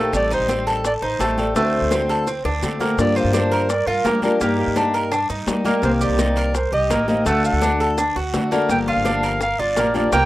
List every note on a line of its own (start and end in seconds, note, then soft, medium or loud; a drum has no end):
0.00 0.12 A#1 medium
0.00 0.11 D#3 soft
0.00 0.30 A3 medium
0.00 0.13 A#3 soft
0.00 0.13 C4 medium
0.00 0.13 G4 medium
0.12 0.39 A1 medium
0.12 0.83 D#3 medium
0.12 0.83 G3 medium
0.12 0.84 C4 medium
0.12 0.84 G4 medium
0.12 0.31 D5 loud
0.12 high bongo medium
0.12 high conga soft
0.12 long guiro medium
0.12 maracas medium
0.31 0.49 D#4 medium
0.31 0.66 C5 medium
0.31 high bongo soft
0.31 high conga soft
0.31 maracas medium
0.40 0.99 A1 medium
0.48 0.66 C4 medium
0.48 high bongo medium
0.48 high conga medium
0.48 short guiro medium
0.48 maracas medium
0.67 1.01 A4 medium
0.67 high bongo soft
0.67 short guiro medium
0.67 maracas soft
0.84 0.94 D5 medium
0.84 muted steel-string acoustic guitar stroke medium
0.84 high bongo medium
0.84 high conga soft
0.84 long guiro medium
0.84 maracas medium
1.02 1.19 A1 medium
1.02 1.20 D#4 medium
1.02 1.41 C5 medium
1.02 high bongo soft
1.02 high conga soft
1.19 1.54 A1 medium
1.19 1.37 D#3 soft
1.19 1.37 G3 soft
1.19 1.55 A3 medium
1.19 1.38 C4 soft
1.19 1.36 G4 soft
1.19 high bongo medium
1.19 low bongo medium
1.19 high conga medium
1.19 short guiro medium
1.19 maracas medium
1.38 1.55 G3 soft
1.38 1.55 C4 medium
1.38 1.55 G4 medium
1.38 1.55 A4 medium
1.38 high conga medium
1.38 short guiro medium
1.38 maracas soft
1.55 1.81 D2 medium
1.55 2.25 D3 medium
1.55 2.26 A3 medium
1.55 1.90 A3 medium
1.55 2.26 C4 medium
1.55 2.26 F#4 medium
1.55 2.58 C5 medium
1.55 high bongo medium
1.55 high conga soft
1.55 long guiro medium
1.55 maracas medium
1.74 high bongo soft
1.74 high conga soft
1.82 2.41 D2 medium
1.91 2.09 C4 medium
1.91 high bongo medium
1.91 high conga medium
1.91 short guiro medium
1.91 maracas medium
2.09 2.27 A4 medium
2.09 short guiro medium
2.09 maracas soft
2.27 2.45 C4 medium
2.27 muted steel-string acoustic guitar stroke medium
2.27 high bongo medium
2.27 high conga soft
2.27 long guiro medium
2.27 maracas medium
2.45 2.62 D2 medium
2.45 2.79 D4 medium
2.45 high bongo medium
2.45 high conga soft
2.62 2.80 D3 soft
2.62 2.96 D3 medium
2.62 2.80 A3 soft
2.62 2.79 C4 soft
2.62 2.78 F#4 soft
2.62 low bongo medium
2.62 high conga medium
2.62 short guiro medium
2.62 maracas medium
2.79 2.98 A3 soft
2.79 2.98 A#3 medium
2.79 2.97 C4 medium
2.79 2.97 F#4 medium
2.79 low bongo medium
2.79 high conga medium
2.79 short guiro medium
2.79 maracas soft
2.97 3.23 G2 medium
2.97 3.68 D3 medium
2.97 3.68 F3 medium
2.97 3.69 A#3 medium
2.97 3.69 D4 medium
2.97 3.70 G4 medium
2.97 3.18 D5 medium
2.97 high bongo medium
2.97 long guiro medium
2.97 maracas medium
3.16 3.33 F4 medium
3.16 3.71 C5 medium
3.16 high bongo soft
3.16 maracas medium
3.24 3.84 G2 medium
3.33 3.51 D4 medium
3.33 high bongo medium
3.33 high conga medium
3.33 short guiro medium
3.33 maracas medium
3.51 3.86 A#4 medium
3.51 high bongo soft
3.51 high conga soft
3.51 short guiro medium
3.51 maracas soft
3.69 3.88 D5 medium
3.69 muted steel-string acoustic guitar stroke medium
3.69 high bongo medium
3.69 high conga soft
3.69 long guiro medium
3.69 maracas medium
3.87 4.04 G2 medium
3.87 4.05 F4 medium
3.87 4.22 A#4 medium
3.87 high bongo soft
3.87 high conga soft
4.05 4.22 F3 soft
4.05 4.39 G3 medium
4.05 4.39 A#3 medium
4.05 4.22 A#3 soft
4.05 4.22 D4 soft
4.05 4.21 G4 soft
4.05 high bongo medium
4.05 low bongo medium
4.05 high conga medium
4.05 short guiro medium
4.05 maracas medium
4.22 4.40 F3 soft
4.22 4.40 A#3 medium
4.22 4.40 D4 soft
4.22 4.40 G4 medium
4.22 4.39 A#4 medium
4.22 high conga medium
4.22 short guiro medium
4.22 maracas soft
4.40 4.66 G2 loud
4.40 5.11 G3 medium
4.40 4.75 A#3 medium
4.40 5.12 A#3 medium
4.40 5.12 D#4 medium
4.40 4.57 G4 medium
4.40 5.12 G4 medium
4.40 high bongo medium
4.40 high conga soft
4.40 long guiro medium
4.40 maracas medium
4.58 5.08 G4 medium
4.58 high bongo soft
4.58 high conga soft
4.67 5.27 G2 medium
4.76 4.94 D4 medium
4.76 high bongo medium
4.76 high conga medium
4.76 short guiro medium
4.76 maracas medium
4.94 5.12 A#4 medium
4.94 short guiro medium
4.94 maracas soft
5.11 5.29 D4 medium
5.11 muted steel-string acoustic guitar stroke medium
5.11 high bongo medium
5.11 high conga soft
5.11 long guiro medium
5.11 maracas medium
5.29 5.46 G2 medium
5.29 5.64 D#4 medium
5.29 high bongo soft
5.29 high conga soft
5.29 maracas medium
5.47 5.64 G3 soft
5.47 5.81 G3 medium
5.47 5.64 A#3 soft
5.47 5.64 D#4 soft
5.47 5.63 G4 soft
5.47 high bongo medium
5.47 low bongo medium
5.47 high conga medium
5.47 short guiro medium
5.47 maracas medium
5.64 5.82 G3 soft
5.64 5.82 A#3 medium
5.64 6.00 A#3 medium
5.64 5.82 D#4 medium
5.64 5.82 G4 medium
5.64 high bongo soft
5.64 high conga medium
5.64 short guiro medium
5.64 maracas soft
5.82 6.09 C2 loud
5.82 6.53 C3 medium
5.82 6.53 D#3 medium
5.82 6.53 A#3 medium
5.82 6.54 C4 medium
5.82 6.54 G4 medium
5.82 5.92 C5 medium
5.82 high bongo medium
5.82 high conga soft
5.82 long guiro medium
5.82 maracas medium
6.01 6.19 G4 medium
6.01 6.57 D5 medium
6.01 high bongo soft
6.01 maracas medium
6.09 6.69 C2 medium
6.18 6.36 D#4 medium
6.18 high bongo medium
6.18 high conga medium
6.18 short guiro medium
6.18 maracas medium
6.36 6.72 A#4 medium
6.36 high bongo soft
6.36 high conga soft
6.36 short guiro medium
6.36 maracas soft
6.54 6.73 C5 medium
6.54 muted steel-string acoustic guitar stroke medium
6.54 high bongo medium
6.54 high conga soft
6.54 long guiro medium
6.54 maracas medium
6.72 6.89 C2 medium
6.72 6.90 G4 medium
6.72 7.06 D#5 medium
6.72 high bongo soft
6.72 high conga soft
6.90 7.24 A1 medium
6.90 7.08 D#3 soft
6.90 7.08 A#3 soft
6.90 7.25 A#3 medium
6.90 7.07 C4 soft
6.90 7.07 G4 soft
6.90 high bongo medium
6.90 low bongo medium
6.90 high conga medium
6.90 short guiro medium
6.90 maracas medium
7.08 7.24 D#3 soft
7.08 7.25 A#3 medium
7.08 7.26 C4 medium
7.08 7.25 G4 medium
7.08 7.29 D#5 medium
7.08 high conga medium
7.08 short guiro medium
7.08 maracas soft
7.25 7.52 D2 medium
7.25 7.96 D3 medium
7.25 7.96 A3 medium
7.25 7.61 A3 medium
7.25 7.97 D4 medium
7.25 7.97 F#4 medium
7.25 7.45 F#5 loud
7.25 high bongo medium
7.25 high conga soft
7.25 long guiro medium
7.25 maracas medium
7.44 7.95 F#5 medium
7.44 high bongo soft
7.44 maracas medium
7.53 8.13 D2 medium
7.62 7.79 D4 medium
7.62 high bongo medium
7.62 high conga medium
7.62 short guiro medium
7.62 maracas medium
7.80 7.98 A4 medium
7.80 short guiro medium
7.80 maracas soft
7.97 8.15 D4 medium
7.97 muted steel-string acoustic guitar stroke medium
7.97 high bongo medium
7.97 high conga soft
7.97 long guiro medium
7.97 maracas medium
8.16 8.33 D2 medium
8.16 8.51 F#4 medium
8.16 high bongo soft
8.16 high conga soft
8.33 8.51 D3 soft
8.33 8.68 D3 medium
8.33 8.51 A3 soft
8.33 8.51 D4 soft
8.33 8.50 F#4 soft
8.33 high bongo medium
8.33 low bongo medium
8.33 high conga medium
8.33 short guiro medium
8.33 maracas medium
8.51 8.69 A3 soft
8.51 8.87 A#3 medium
8.51 8.69 D4 medium
8.51 8.69 F#4 medium
8.51 high bongo soft
8.51 high conga medium
8.51 short guiro medium
8.51 maracas soft
8.69 8.95 G1 loud
8.69 9.39 D3 medium
8.69 9.40 F3 medium
8.69 9.41 A#3 medium
8.69 9.40 D4 medium
8.69 9.41 G4 medium
8.69 8.78 G5 loud
8.69 high bongo medium
8.69 high conga soft
8.69 long guiro medium
8.69 maracas medium
8.87 9.05 F4 medium
8.87 9.38 F5 loud
8.87 high bongo soft
8.96 9.56 G1 medium
9.05 9.23 D4 medium
9.05 high bongo medium
9.05 high conga medium
9.05 short guiro medium
9.05 maracas medium
9.23 9.58 A#4 medium
9.23 high bongo soft
9.23 high conga soft
9.23 short guiro medium
9.23 maracas soft
9.41 9.61 F5 medium
9.41 muted steel-string acoustic guitar stroke medium
9.41 high bongo medium
9.41 high conga soft
9.41 long guiro medium
9.41 maracas medium
9.58 9.76 G1 medium
9.58 9.77 F4 medium
9.58 9.95 D5 medium
9.58 high bongo soft
9.58 high conga soft
9.76 10.11 A#1 medium
9.76 9.94 F3 soft
9.76 9.94 A#3 soft
9.76 10.12 A#3 medium
9.76 9.94 D4 soft
9.76 9.93 G4 soft
9.76 high bongo medium
9.76 low bongo medium
9.76 high conga medium
9.76 short guiro medium
9.76 maracas medium
9.94 10.12 F3 soft
9.94 10.12 A#3 medium
9.94 10.12 D4 medium
9.94 10.12 G4 medium
9.94 10.12 D5 medium
9.94 high conga medium
9.94 short guiro medium
9.94 maracas soft
10.12 10.25 C2 medium
10.12 10.25 C3 medium
10.12 10.25 D#3 medium
10.12 10.25 A#3 medium
10.12 10.25 C4 medium
10.12 10.25 G4 medium
10.12 10.25 G5 loud
10.12 high bongo medium
10.12 high conga soft
10.12 long guiro medium
10.12 maracas medium